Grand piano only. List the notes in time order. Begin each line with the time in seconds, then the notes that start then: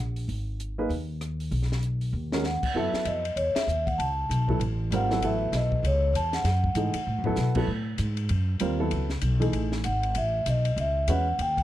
0.78 A#3 D#4 G#4 B4
2.33 G#3 C#4 F#4 A#4
2.75 F#3 B3 E4 A4
4.48 F#3 B3 E4 A4
4.92 G3 C4 F4 A#4
5.10 F#3 B3 E4 A4
5.23 F#3 B3 E4 A4
6.76 E3 A3 D#4 G#4
7.25 F#3 B3 E4 A4
7.56 F#3 B3 E4 A4
8.60 G3 C4 F4 A#4
8.79 F#3 B3 E4 A4
9.40 E3 A3 D#4 G#4
11.08 G#3 C#4 F#4 B4